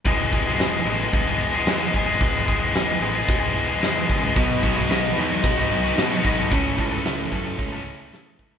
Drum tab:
HH |o-o-o-o-o-o-o-o-|o-o-o-o-o-o-o-o-|o-o-o-o-o-o-o-o-|o-o-o-o-o-o-o-o-|
SD |---oo-------o---|----o-------o---|----o-------o---|----o--o----o---|
BD |o-o-----o-----o-|o-o-----o-----o-|o-o-----o-----o-|o-o---o-o-----o-|